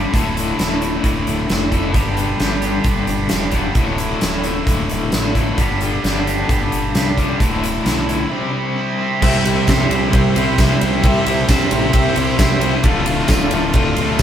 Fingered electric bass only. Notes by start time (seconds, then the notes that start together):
0.14 D1
0.58 D1
1.04 D1
1.27 D1
1.50 F1
1.95 G1
2.40 G1
2.85 G1
3.08 G1
3.31 E1
3.75 D1
4.22 D1
4.67 D1
4.91 D1
5.13 A1
5.58 G1
6.03 G1
6.49 G1
6.72 G1
6.94 C2
7.40 D1
7.86 B1
9.23 C2
9.69 C2
9.90 C2
10.14 C2
10.36 C2
10.59 C2
10.82 C2
11.04 C2
11.26 C2
11.49 C2
11.71 A1
11.94 C2
12.17 C2
12.39 C2
12.84 D1
13.29 D1
13.52 D1
13.74 D1
13.97 D2